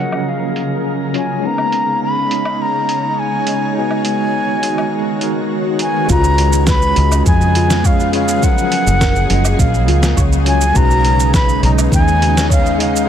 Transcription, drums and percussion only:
0.12 low woodblock
0.56 closed hi-hat
1.14 closed hi-hat
1.58 low woodblock
1.72 closed hi-hat
2.31 closed hi-hat
2.45 low woodblock
2.89 closed hi-hat
3.47 closed hi-hat
3.91 low woodblock
4.05 closed hi-hat
4.63 closed hi-hat
4.78 low woodblock
5.21 closed hi-hat
5.79 closed hi-hat
6.09 kick, shaker
6.24 shaker
6.38 closed hi-hat
6.53 shaker
6.67 kick, snare, shaker
6.82 shaker
6.96 closed hi-hat
7.12 low woodblock, shaker
7.26 kick, shaker
7.41 shaker
7.55 closed hi-hat
7.70 snare, shaker
7.84 kick, shaker
8.00 shaker
8.13 closed hi-hat
8.28 shaker
8.43 kick, shaker
8.58 shaker
8.72 closed hi-hat
8.87 shaker
9.01 kick, snare, shaker
9.16 shaker
9.30 closed hi-hat
9.45 low woodblock, shaker
9.59 kick, shaker
9.74 shaker
9.88 closed hi-hat
10.03 snare, shaker
10.17 kick, shaker
10.32 shaker
10.46 closed hi-hat
10.61 shaker
10.75 kick, shaker
10.91 shaker
11.05 closed hi-hat
11.20 shaker
11.34 kick, snare, shaker
11.49 shaker
11.63 closed hi-hat
11.78 low woodblock, shaker
11.92 kick, shaker
12.08 shaker
12.22 closed hi-hat
12.37 snare, shaker
12.50 kick, shaker
12.66 shaker
12.80 closed hi-hat
12.96 shaker

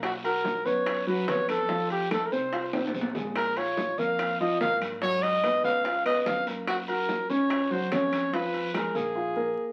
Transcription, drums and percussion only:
0.03 high bongo, high conga, high timbale, long guiro, claves
0.23 high bongo, high conga, high timbale
0.45 high bongo, high conga, short guiro
0.66 high conga, short guiro
0.86 high bongo, high conga, high timbale, long guiro, claves
1.07 high bongo, high conga
1.28 high bongo, low bongo, high timbale, low timbale, short guiro
1.49 high bongo, high conga, high timbale, short guiro, claves
1.69 high bongo, high conga, long guiro
1.90 high bongo, high conga, high timbale
2.11 high bongo, high conga, high timbale, short guiro, claves
2.32 high conga, short guiro
2.53 high bongo, high conga, high timbale, long guiro
2.73 high bongo, high conga, high timbale, claves
2.87 low timbale
2.94 high conga, short guiro
3.01 low timbale
3.15 low bongo, low timbale, short guiro
3.36 high bongo, high conga, high timbale, long guiro, claves
3.57 high bongo, high conga, high timbale
3.77 high bongo, high conga, short guiro
3.98 high conga, short guiro
4.19 high bongo, high conga, high timbale, long guiro, claves
4.40 high bongo
4.61 high bongo, low bongo, high timbale, short guiro
4.81 high bongo, high conga, high timbale, short guiro, claves
5.02 high bongo, high conga, long guiro
5.23 high bongo, high conga, high timbale
5.43 high bongo, high conga, high timbale, short guiro, claves
5.64 high conga, short guiro
5.85 high bongo, high conga, high timbale, long guiro
6.05 high conga, high timbale, claves
6.26 high bongo, low bongo, high conga, short guiro
6.47 high bongo, high timbale, short guiro
6.67 high bongo, high conga, high timbale, long guiro, claves
6.88 high bongo, high conga, high timbale
7.09 high bongo, high conga, short guiro
7.30 high conga, short guiro
7.50 high bongo, high conga, high timbale, long guiro, claves
7.71 high bongo
7.92 high bongo, low bongo, high timbale, low timbale, short guiro
8.12 high bongo, high conga, high timbale, short guiro, claves
8.34 high bongo, long guiro
8.53 high bongo, high conga, high timbale
8.74 high bongo, high conga, high timbale, short guiro, claves
8.95 high conga, short guiro

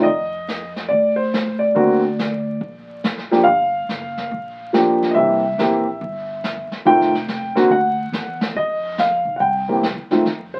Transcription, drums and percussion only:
0.06 brush sweep, kick
0.48 snare, hi-hat pedal
0.76 snare
0.91 brush sweep, kick
1.34 snare, hi-hat pedal
1.76 brush sweep, kick
2.19 snare, hi-hat pedal
2.61 brush sweep, kick
3.04 snare, hi-hat pedal
3.18 snare
3.32 snare
3.46 brush sweep, kick
3.89 snare, hi-hat pedal
4.17 snare
4.31 brush sweep, kick
4.74 snare, hi-hat pedal
5.02 snare
5.17 brush sweep, kick
5.59 snare, hi-hat pedal
6.01 brush sweep, kick
6.44 snare, hi-hat pedal
6.72 snare
6.86 brush sweep, kick
7.01 snare
7.15 snare
7.28 snare, hi-hat pedal
7.56 snare
7.71 brush sweep, kick
8.13 snare, hi-hat pedal
8.41 snare
8.56 brush sweep, kick
8.98 snare, hi-hat pedal
9.40 brush sweep, kick
9.83 snare, hi-hat pedal
10.11 snare
10.25 brush sweep, kick, snare

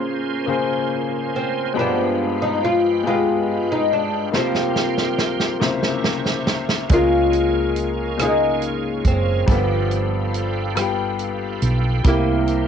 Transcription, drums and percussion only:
4.34 snare
4.55 snare
4.76 snare
4.98 snare
5.18 snare
5.40 snare
5.61 snare
5.83 snare
6.04 snare
6.26 snare
6.47 snare
6.69 snare
6.89 kick, closed hi-hat
7.33 closed hi-hat
7.76 closed hi-hat
8.19 cross-stick, closed hi-hat
8.62 closed hi-hat
9.05 kick, closed hi-hat
9.47 kick, closed hi-hat
9.91 closed hi-hat
10.34 closed hi-hat
10.77 cross-stick, closed hi-hat
11.19 closed hi-hat
11.62 closed hi-hat
12.04 kick, closed hi-hat
12.48 closed hi-hat

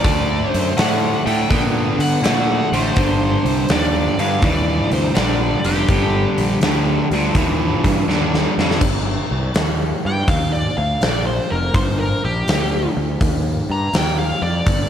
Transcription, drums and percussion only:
0.04 kick, open hi-hat
0.54 open hi-hat
0.78 snare, open hi-hat
1.27 open hi-hat
1.50 kick, open hi-hat
2.00 open hi-hat
2.24 snare, open hi-hat
2.73 open hi-hat
2.96 kick, open hi-hat
3.46 open hi-hat
3.69 snare, open hi-hat
4.19 open hi-hat
4.42 kick, open hi-hat
4.91 open hi-hat
5.15 snare, open hi-hat
5.64 open hi-hat
5.88 kick, open hi-hat
6.38 open hi-hat
6.61 snare, open hi-hat
7.11 open hi-hat
7.35 kick, open hi-hat
7.84 kick, open hi-hat
8.10 snare
8.34 snare
8.59 snare
8.71 snare
8.81 kick, crash
9.54 snare, open hi-hat
10.28 kick, open hi-hat
11.01 snare, open hi-hat
11.74 kick, open hi-hat
12.48 snare, open hi-hat
13.21 kick, open hi-hat
13.93 snare, open hi-hat
14.66 kick, open hi-hat

